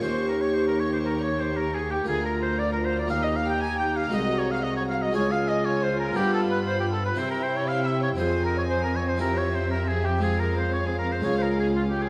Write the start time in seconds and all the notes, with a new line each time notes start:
Already playing: C#6
0.00 D#2 A#3 C#4 G4 C5
0.04 D#2 G4
0.29 A#4
0.41 C#5
0.53 C5
0.67 A#4
0.80 C#5
0.94 C5
1.06 A#4
1.23 C#5
1.40 C5
1.57 A#4
1.74 G#4
1.91 G4
2.05 A#3 F4 G#4
2.09 D2 A#5
2.25 A#4
2.42 C5
2.59 D5
2.72 A#4
2.85 C5
2.98 D5
3.07 A#3 D#4 G4 F5
3.11 D#2 G4
3.23 D#5
3.36 F5
3.49 G5
3.61 G#5
3.78 G5
3.96 F5
4.09 C2 G#3 F#4 G#4
4.13 C2 F#4 D#5
4.39 C#5
4.51 F5
4.64 D#5
4.77 C#5
4.90 F5
5.03 D#5
5.11 G#3 F4 G#4 C#5
5.15 C#2 F4 C#5 G#5
5.32 F5
5.48 D#5
5.65 C#5
5.83 C5
5.99 A#4
6.13 G2 B3 F4 G4 B5
6.18 G2
6.33 A4
6.50 B4
6.66 C5
6.79 G4
6.92 A4
7.05 B4
7.14 C3 C4 E4 G4 C5
7.18 C3 E4 G5
7.30 A#4
7.42 C5
7.55 C#5
7.67 F5
7.84 E5
8.00 C#5
8.15 F2 C4 F4 G#4 C5
8.20 F2 C4 G#5
8.43 A#4
8.55 C#5
8.69 C5
8.82 A#4
8.95 C#5
9.08 C5
9.16 C4 E4 G4
9.21 A#4 E5
9.37 C#5
9.55 C5
9.71 A#4
9.88 G#4
10.05 G4
10.19 G#3 C4 F4 G#4 F5
10.40 A#4
10.56 C5
10.73 C#5
10.86 G#4
10.98 A#4
11.12 C5
11.21 G#3 C#4 F4 C#5
11.25 C#2 C#4 C#5
11.37 C5
11.42 A#4
11.58 G#4
11.76 F4
11.89 G4
12.02 G#4